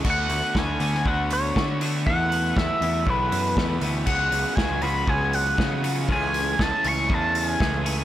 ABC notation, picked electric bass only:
X:1
M:4/4
L:1/16
Q:1/4=119
K:A
V:1 name="Picked electric bass" clef=bass
D,,2 D,, z D,,2 D,,2 D,,4 D,4 | E,,4 E,, z E,,2 B,,,2 F,,2 E,,2 D,,2 | C,,2 C,, z C,,2 C,,2 C,,4 C,4 | C,,4 C,, z C,,2 E,,4 C,,4 |]